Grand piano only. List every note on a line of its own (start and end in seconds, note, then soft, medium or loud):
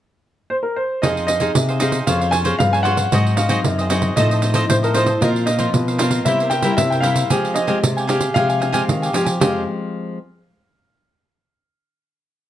0.50 0.55 C5 medium
0.63 0.76 A#4 medium
0.76 1.01 C5 medium
1.02 1.25 D#5 medium
1.27 2.02 D#5 loud
2.07 2.31 F5 medium
2.31 2.37 G#5 loud
2.59 2.71 F5 loud
2.73 2.78 G#5 loud
2.83 3.38 F#5 medium
3.36 3.86 F5 medium
4.16 4.65 D#5 medium
4.70 4.75 C5 medium
4.84 4.96 A#4 medium
4.95 5.19 C5 medium
5.22 5.28 D#5 medium
5.46 6.21 D#5 medium
6.25 6.50 E5 medium
6.50 6.75 G5 loud
6.77 6.91 E5 loud
6.90 7.03 G5 medium
7.00 7.57 F5 medium
7.54 8.04 D#5 medium
8.34 9.10 F5 loud
9.42 9.66 F5 medium